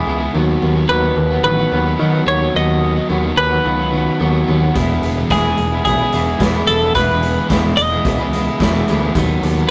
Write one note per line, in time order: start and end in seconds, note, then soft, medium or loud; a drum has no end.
0.00 0.31 E2 medium
0.00 0.31 B2 medium
0.00 0.20 E3 medium
0.05 0.27 C#2 medium
0.05 0.21 E3 medium
0.05 0.20 G#3 medium
0.05 0.20 B3 medium
0.05 0.19 E4 medium
0.05 0.18 G#4 medium
0.19 0.33 E3 medium
0.19 0.33 G#3 medium
0.19 0.34 B3 medium
0.19 0.32 E4 medium
0.19 0.32 G#4 medium
0.33 0.55 D#2 medium
0.33 0.61 D#3 medium
0.33 0.88 F#3 medium
0.33 0.61 B3 medium
0.33 0.62 D#4 medium
0.33 0.63 F#4 medium
0.61 0.83 D#2 medium
0.61 0.88 D#3 medium
0.61 0.78 B3 medium
0.61 0.76 D#4 medium
0.61 0.75 F#4 medium
0.76 0.90 B3 medium
0.76 0.91 D#4 medium
0.76 0.91 F#4 medium
0.89 1.10 D#2 medium
0.89 1.72 D#3 medium
0.89 1.05 F#3 medium
0.89 1.05 B3 medium
0.89 1.04 D#4 medium
0.89 1.02 F#4 medium
0.89 1.43 B4 medium
1.02 1.15 F#3 medium
1.02 1.32 B3 medium
1.02 1.31 D#4 medium
1.02 1.29 F#4 medium
1.16 1.37 D#2 medium
1.16 muted clean electric guitar stroke soft
1.30 1.43 F#3 medium
1.30 1.60 B3 medium
1.30 1.59 D#4 medium
1.30 1.57 F#4 medium
1.43 1.64 A1 medium
1.43 1.69 D#3 medium
1.43 1.58 F#3 medium
1.43 1.58 B3 medium
1.43 1.55 F#4 medium
1.43 2.23 B4 medium
1.58 1.71 F#3 medium
1.58 1.73 B3 medium
1.58 1.73 D#4 medium
1.58 1.74 F#4 medium
1.72 1.93 D#2 medium
1.72 1.98 D#3 medium
1.72 1.97 F#3 medium
1.72 1.88 B3 medium
1.72 1.86 D#4 medium
1.72 1.84 F#4 medium
1.85 2.00 B3 medium
1.85 2.00 D#4 medium
1.85 2.01 F#4 medium
1.98 2.25 D#3 medium
1.98 2.20 D#3 medium
1.98 2.14 F#3 medium
1.98 2.27 B3 medium
1.98 2.27 D#4 medium
2.03 2.28 F#4 medium
2.12 2.25 F#3 medium
2.12 2.27 B3 medium
2.12 2.27 F#4 medium
2.26 2.47 D#2 medium
2.26 2.52 D#3 medium
2.26 2.41 F#3 medium
2.26 2.42 B3 medium
2.26 2.40 D#4 medium
2.26 2.39 F#4 medium
2.26 2.56 C#5 medium
2.40 2.53 F#3 soft
2.40 2.55 B3 medium
2.40 2.54 D#4 medium
2.40 2.55 F#4 medium
2.53 2.97 D#2 medium
2.53 2.80 D#3 medium
2.53 3.08 F#3 medium
2.53 2.82 B3 medium
2.53 2.82 D#4 medium
2.53 2.83 F#4 medium
2.53 3.07 D#5 medium
2.81 3.09 D#3 medium
2.81 2.98 B3 medium
2.81 2.96 D#4 medium
2.81 2.95 F#4 medium
2.96 3.10 B3 soft
2.96 3.10 D#4 medium
2.96 3.12 F#4 medium
3.09 3.30 D#2 medium
3.09 3.51 D#3 medium
3.09 3.23 F#3 medium
3.09 3.27 B3 medium
3.09 3.24 D#4 medium
3.09 3.23 F#4 medium
3.23 3.34 F#3 soft
3.23 3.36 B3 medium
3.23 3.53 D#4 medium
3.23 3.51 F#4 medium
3.27 3.55 B3 medium
3.35 3.58 D#2 medium
3.35 4.16 B4 loud
3.35 muted clean electric guitar stroke soft
3.51 3.63 F#3 soft
3.51 3.65 B3 medium
3.51 3.79 D#4 medium
3.51 3.78 F#4 medium
3.55 3.81 B3 medium
3.63 4.07 C#2 medium
3.63 3.90 D#3 medium
3.63 3.77 F#3 medium
3.63 3.76 B3 medium
3.63 3.74 F#4 medium
3.75 3.91 F#3 medium
3.75 3.93 B3 medium
3.75 3.93 F#4 medium
3.79 3.94 B3 soft
3.79 3.93 D#4 medium
3.79 3.95 F#4 medium
3.92 4.18 D#3 medium
3.92 4.19 F#3 medium
3.92 4.09 B3 medium
3.92 4.07 D#4 medium
3.92 4.05 F#4 medium
4.06 4.20 B3 soft
4.06 4.20 D#4 medium
4.06 4.21 F#4 medium
4.19 4.41 D#2 medium
4.19 4.46 D#3 medium
4.19 4.33 F#3 medium
4.19 4.48 B3 medium
4.19 4.48 D#4 medium
4.19 4.49 F#4 medium
4.32 4.45 F#3 soft
4.32 4.47 B3 medium
4.32 4.48 F#4 medium
4.46 4.69 D#2 medium
4.46 4.73 D#3 medium
4.46 4.61 F#3 medium
4.46 4.64 B3 medium
4.46 4.62 D#4 medium
4.46 4.61 F#4 medium
4.62 4.74 F#3 medium
4.62 4.77 B3 medium
4.62 4.74 D#4 medium
4.62 4.74 F#4 medium
4.75 4.96 E1 medium
4.75 5.31 E2 medium
4.75 5.31 B2 medium
4.75 5.02 E3 medium
4.75 5.03 G#3 medium
4.75 5.04 B3 medium
4.75 5.31 E4 medium
4.75 5.05 G#4 medium
4.75 kick loud
4.75 closed hi-hat medium
5.02 5.23 E1 medium
5.02 5.19 E3 medium
5.02 5.19 G#3 medium
5.02 5.18 B3 medium
5.02 closed hi-hat soft
5.06 5.16 G#4 medium
5.17 5.32 E3 medium
5.17 5.32 G#3 medium
5.17 5.33 B3 medium
5.17 5.34 G#4 medium
5.28 5.51 E1 medium
5.28 6.40 E2 medium
5.28 5.56 E3 medium
5.28 5.43 E4 medium
5.28 kick loud
5.28 snare loud
5.28 closed hi-hat medium
5.32 5.72 B2 medium
5.32 5.47 E3 medium
5.32 5.46 G#3 medium
5.32 5.45 B3 medium
5.32 5.82 G#4 medium
5.32 5.44 G#4 medium
5.43 5.74 E3 soft
5.43 5.72 G#3 medium
5.43 5.73 B3 medium
5.43 5.57 E4 medium
5.43 5.71 G#4 medium
5.57 5.79 E1 medium
5.57 muted clean electric guitar stroke soft
5.57 closed hi-hat medium
5.71 6.01 E3 medium
5.71 6.01 G#3 medium
5.71 6.01 B3 medium
5.71 5.86 E4 medium
5.71 5.98 G#4 medium
5.84 6.06 B1 medium
5.84 6.10 E3 medium
5.84 5.99 G#3 medium
5.84 5.98 B3 medium
5.84 5.97 E4 medium
5.84 6.67 G#4 medium
5.84 kick loud
5.84 closed hi-hat medium
5.98 6.14 B3 medium
5.98 6.13 E4 medium
5.98 6.14 G#4 medium
6.02 6.11 E3 medium
6.02 6.13 G#3 medium
6.12 6.33 E1 medium
6.12 6.29 E3 medium
6.12 6.27 G#3 medium
6.12 6.27 B3 medium
6.12 6.40 E4 medium
6.12 6.26 G#4 medium
6.12 closed hi-hat medium
6.27 6.40 E3 soft
6.27 6.41 G#3 medium
6.27 6.42 B3 medium
6.27 6.42 G#4 medium
6.40 6.61 E2 medium
6.40 6.95 E2 medium
6.40 6.96 B2 medium
6.40 6.66 E3 medium
6.40 6.68 G#3 medium
6.40 6.70 B3 medium
6.40 6.52 E4 medium
6.40 6.69 G#4 medium
6.40 kick loud
6.40 snare loud
6.40 closed hi-hat medium
6.53 6.67 G#3 medium
6.53 6.69 B3 medium
6.53 6.69 E4 medium
6.67 6.89 E1 medium
6.67 6.83 E3 medium
6.67 6.82 G#3 medium
6.67 6.82 B3 medium
6.67 6.79 E4 medium
6.67 6.81 G#4 medium
6.67 6.95 A4 medium
6.67 closed hi-hat medium
6.80 6.97 G#3 medium
6.80 6.98 B3 medium
6.80 6.95 E4 medium
6.80 6.98 G#4 medium
6.84 6.97 E3 medium
6.94 7.37 E1 medium
6.94 7.50 E2 medium
6.94 7.51 B2 medium
6.94 7.47 E3 medium
6.94 7.50 E4 medium
6.94 7.46 B4 medium
6.94 kick loud
6.94 closed hi-hat medium
6.98 7.22 E3 medium
6.98 7.23 G#3 medium
6.98 7.24 B3 medium
6.98 7.24 G#4 loud
7.23 7.39 E3 medium
7.23 7.38 G#3 medium
7.23 7.38 B3 medium
7.23 7.36 G#4 medium
7.23 closed hi-hat medium
7.37 7.51 E3 medium
7.37 7.52 G#3 medium
7.37 7.53 B3 medium
7.37 7.52 G#4 medium
7.48 7.71 E1 medium
7.48 7.92 E2 medium
7.48 7.92 B2 medium
7.48 7.77 E3 medium
7.48 7.65 G#3 medium
7.48 7.62 E4 medium
7.48 kick loud
7.48 snare loud
7.48 closed hi-hat medium
7.53 7.67 E3 medium
7.53 7.66 G#3 medium
7.53 7.66 B3 medium
7.53 7.64 G#4 medium
7.63 7.93 G#3 medium
7.63 7.93 B3 medium
7.63 7.78 E4 medium
7.63 7.91 G#4 medium
7.68 7.94 E3 medium
7.77 7.98 E1 medium
7.77 8.56 D#5 loud
7.77 muted clean electric guitar stroke soft
7.77 closed hi-hat medium
7.90 8.19 G#3 medium
7.90 8.20 B3 medium
7.90 8.05 E4 medium
7.90 8.18 G#4 medium
7.95 8.21 E3 medium
8.04 8.47 C#2 medium
8.04 8.31 E3 medium
8.04 8.19 G#3 medium
8.04 8.18 B3 medium
8.04 8.16 E4 medium
8.04 kick loud
8.04 closed hi-hat medium
8.17 8.32 G#3 medium
8.17 8.34 B3 medium
8.17 8.34 E4 medium
8.17 8.34 G#4 medium
8.22 8.31 E3 medium
8.32 8.49 E3 medium
8.32 8.48 G#3 medium
8.32 8.47 B3 medium
8.32 8.60 E4 medium
8.32 8.46 G#4 medium
8.32 closed hi-hat medium
8.47 8.60 E3 medium
8.47 8.61 G#3 medium
8.47 8.62 B3 medium
8.47 8.62 G#4 medium
8.60 8.81 E1 medium
8.60 9.14 E2 medium
8.60 9.14 B2 medium
8.60 8.88 E3 medium
8.60 8.89 G#3 loud
8.60 8.91 B3 medium
8.60 8.72 E4 loud
8.60 8.91 G#4 medium
8.60 kick loud
8.60 snare loud
8.60 closed hi-hat medium
8.73 8.86 G#3 medium
8.73 8.88 B3 medium
8.73 8.89 E4 medium
8.88 9.10 D2 medium
8.88 9.04 E3 medium
8.88 9.03 G#3 medium
8.88 9.03 B3 medium
8.88 8.99 E4 medium
8.88 closed hi-hat medium
8.92 9.02 G#4 medium
9.00 9.17 B3 medium
9.00 9.13 E4 medium
9.00 9.14 G#4 medium
9.04 9.15 E3 medium
9.04 9.15 G#3 medium
9.15 9.36 D#2 medium
9.15 9.44 D#3 medium
9.15 9.70 F#3 medium
9.15 9.45 B3 loud
9.15 9.45 D#4 medium
9.15 kick loud
9.15 closed hi-hat medium
9.19 9.46 F#4 medium
9.43 9.64 D#2 medium
9.43 9.71 D#3 medium
9.43 9.60 B3 medium
9.43 9.59 D#4 medium
9.43 closed hi-hat medium
9.47 9.57 F#4 medium
9.57 9.71 B3 medium
9.57 9.71 D#4 medium
9.57 9.71 F#4 medium